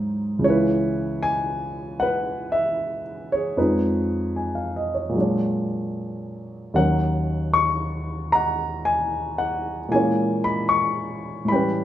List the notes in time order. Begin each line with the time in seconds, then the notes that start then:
Already playing: G#2 F#3 D#4 E4 C5
0.39 C#2 C#3
0.44 E3 E4 C#5
0.50 B4
1.23 G#5
2.00 B4 F#5
2.52 E5
3.32 G#4 C#5
3.57 F2 F3 G#3 D#4 B4
4.36 G#5
4.55 F5
4.76 D#5
4.94 C#5
5.09 A#2 F#3
5.15 G#3 D4
5.21 C#5
6.74 D#2 D#3 F#3 C#4 A#4 C#5 F#5
7.54 C#6
8.32 F#5 A#5
8.85 G#5
9.38 F#5
9.89 A#2 E3 G#3 G#5
9.93 A#3 C#4 C#5
10.44 B5
10.69 C#6
11.45 A2 E3 B5
11.51 G3 C#4 G5
11.56 B4